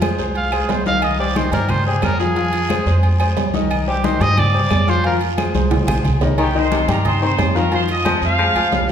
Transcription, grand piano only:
0.02 0.15 G#3 medium
0.02 0.16 G#4 medium
0.02 0.16 C5 medium
0.19 0.46 G#3 medium
0.19 0.46 G#4 medium
0.19 0.46 C5 medium
0.52 0.80 G#3 medium
0.52 0.80 G#4 medium
0.52 0.80 C5 medium
0.86 1.13 D#3 medium
0.86 1.13 D#4 medium
0.86 1.14 D#5 medium
1.19 1.33 G3 medium
1.19 1.33 G4 medium
1.19 1.33 C5 medium
1.36 1.50 D#3 medium
1.36 1.50 D#4 medium
1.36 1.50 D#5 medium
1.53 1.80 G3 medium
1.53 1.80 G4 medium
1.53 1.80 C5 medium
1.87 2.14 G3 medium
1.87 2.14 G4 medium
1.87 2.14 C5 medium
2.20 2.33 F3 medium
2.20 2.34 F4 medium
2.20 2.34 F5 medium
2.36 2.64 F3 medium
2.36 2.64 F4 medium
2.36 2.64 F5 medium
2.70 2.84 G#3 medium
2.70 2.84 G#4 medium
2.70 2.84 C5 medium
2.87 3.14 G#3 medium
2.87 3.14 G#4 medium
2.87 3.14 C5 medium
3.20 3.48 G#3 medium
3.20 3.48 G#4 medium
3.20 3.48 C5 medium
3.54 3.81 D#3 medium
3.54 3.81 D#4 loud
3.54 3.82 D#5 medium
3.87 4.01 G3 medium
3.87 4.01 G4 medium
3.87 4.01 C5 medium
4.04 4.17 D#3 medium
4.04 4.18 D#4 medium
4.04 4.18 D#5 medium
4.21 4.48 G3 medium
4.21 4.48 G4 medium
4.21 4.49 C5 medium
4.54 4.82 G3 medium
4.54 4.82 G4 medium
4.54 4.82 C5 medium
4.87 5.01 F3 medium
4.87 5.01 F4 loud
4.87 5.02 F5 loud
5.04 5.32 F3 medium
5.04 5.32 F4 medium
5.04 5.32 F5 medium
5.38 5.52 G#3 medium
5.38 5.52 G#4 medium
5.38 5.52 C5 medium
5.55 5.82 G#3 medium
5.55 5.82 G#4 medium
5.55 5.82 C5 medium
5.88 6.16 G#3 medium
5.88 6.16 G#4 medium
5.88 6.16 C5 medium
6.22 6.36 D#3 medium
6.22 6.36 D#4 medium
6.22 6.36 D#5 medium
6.55 6.82 D#3 medium
6.55 6.83 D#4 loud
6.55 6.83 D#5 medium
6.88 7.02 G3 medium
6.88 7.02 G4 medium
6.88 7.02 G5 medium
7.05 7.19 D#4 medium
7.05 7.19 D#5 medium
7.05 7.19 D#6 medium
7.22 7.49 C4 medium
7.22 7.50 C5 medium
7.22 7.50 C6 medium
7.55 7.69 F3 medium
7.55 7.69 F4 medium
7.55 7.69 F5 medium
7.72 7.99 F3 medium
7.72 8.00 F4 medium
7.72 8.00 F5 loud
8.06 8.33 C4 medium
8.06 8.33 C5 medium
8.06 8.34 C6 medium
8.39 8.53 G#3 medium
8.39 8.53 G#4 medium
8.39 8.53 G#5 medium
8.55 8.83 F4 medium
8.55 8.83 F5 medium
8.55 8.83 F6 medium

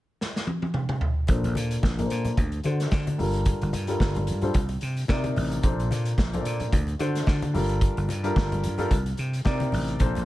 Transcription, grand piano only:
1.28 1.76 A#2 medium
1.28 1.76 A#3 medium
1.28 1.76 D4 medium
1.28 1.76 A4 medium
1.28 1.76 C5 medium
1.98 2.37 A#2 medium
1.98 2.37 A#3 medium
1.98 2.37 D4 medium
1.98 2.38 A4 medium
1.98 2.05 A#4 medium
2.06 2.41 C5 medium
2.64 3.02 D3 medium
2.64 3.03 D4 medium
2.64 3.03 F#4 medium
2.64 3.03 A4 medium
2.64 3.03 C5 medium
3.18 3.73 G3 medium
3.18 3.73 D4 medium
3.18 3.73 F4 medium
3.18 3.73 A4 medium
3.18 3.74 A#4 medium
3.88 4.24 G3 medium
3.88 4.24 D4 medium
3.88 4.24 F4 medium
3.88 4.24 A4 medium
3.88 4.25 A#4 medium
4.42 4.54 G3 medium
4.42 4.54 D4 medium
4.42 4.55 F4 medium
4.42 4.55 A4 medium
4.42 4.55 C5 medium
5.08 5.47 C3 loud
5.08 5.47 C4 medium
5.08 5.48 D#4 medium
5.08 5.48 A#4 medium
5.08 5.48 D5 loud
5.63 6.11 A#2 medium
5.63 6.11 A#3 medium
5.63 6.11 D4 medium
5.63 6.11 A4 medium
5.63 6.12 C5 medium
6.33 6.72 A#2 medium
6.33 6.72 A#3 medium
6.33 6.73 D4 medium
6.33 6.73 A4 medium
6.33 6.40 C5 medium
6.41 6.76 D5 medium
6.99 7.38 D3 medium
6.99 7.38 D4 medium
6.99 7.38 F#4 medium
6.99 7.38 A4 medium
6.99 7.39 C5 medium
7.54 8.09 G3 medium
7.54 8.09 D4 medium
7.54 8.09 F4 medium
7.54 8.09 A4 medium
7.54 8.09 A#4 medium
8.23 8.60 G3 medium
8.23 8.60 D4 medium
8.23 8.60 F4 medium
8.23 8.61 A4 medium
8.23 8.61 A#4 medium
8.78 8.90 G3 medium
8.78 8.91 D4 medium
8.78 8.91 F4 medium
8.78 8.91 A4 medium
8.78 8.91 A#4 medium
9.45 9.84 C3 medium
9.45 9.84 C4 medium
9.45 9.84 D#4 medium
9.45 9.84 A#4 medium
9.45 9.85 D5 loud
9.99 10.25 A#2 medium
9.99 10.25 A#3 medium
9.99 10.25 D4 medium
9.99 10.25 A4 medium
9.99 10.25 C5 medium

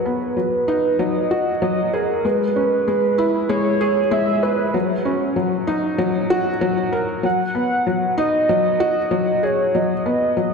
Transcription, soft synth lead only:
0.00 1.02 B4 loud
1.00 1.62 D#5 loud
1.63 1.95 D#5 loud
1.93 2.26 A#4 medium
2.25 3.49 B4 loud
3.50 4.08 C#5 loud
4.12 4.44 E5 loud
4.43 4.74 B4 loud
7.24 8.14 F#5 loud
8.19 9.45 D#5 loud
9.44 9.76 C#5 medium
9.75 10.54 D#5 loud

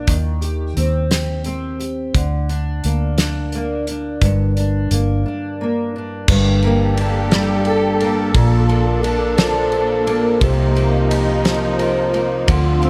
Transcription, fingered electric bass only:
0.08 0.73 D#2 medium
0.77 2.11 D#2 medium
2.15 2.80 D2 medium
2.85 4.18 D2 medium
4.22 4.87 G1 medium
4.91 5.24 G1 medium
6.28 8.31 G1 medium
8.35 10.37 A#1 loud
10.41 12.44 C2 loud
12.48 12.90 D2 loud

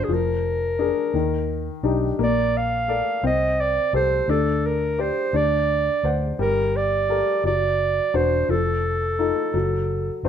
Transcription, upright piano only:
0.00 0.11 F#3 medium
0.00 0.11 D4 soft
0.00 0.11 F#4 soft
0.00 0.11 C5 soft
0.09 1.11 F3 medium
0.79 1.13 D4 soft
0.79 1.13 G#4 soft
0.79 1.13 A#4 soft
1.14 2.16 D#3 medium
1.83 2.17 D4 soft
1.83 2.18 D#4 soft
1.83 2.18 G4 soft
2.19 3.20 A#3 medium
2.88 3.22 A4 soft
2.88 3.23 A#4 soft
2.88 3.23 D5 soft
3.24 4.25 C4 medium
3.94 4.27 G4 soft
3.94 4.28 A4 soft
3.94 4.28 C5 soft
4.29 5.31 D4 medium
4.98 5.32 G4 soft
4.98 5.33 C5 soft
4.98 5.33 D5 soft
5.34 6.36 D4 medium
6.04 6.38 C5 soft
6.04 6.38 D5 soft
6.04 6.39 F#5 soft
6.39 7.41 G3 medium
7.09 7.43 G4 soft
7.09 7.43 A4 soft
7.09 7.43 A#4 soft
7.45 8.47 F#3 medium
8.14 8.48 D4 soft
8.14 8.48 F#4 soft
8.14 8.48 C5 soft
8.49 9.51 F3 medium
9.19 9.53 D#4 soft
9.19 9.53 F4 soft
9.19 9.53 A4 medium
9.54 10.29 F#3 medium
10.24 10.29 D4 soft
10.24 10.29 F#4 soft
10.24 10.29 C5 medium

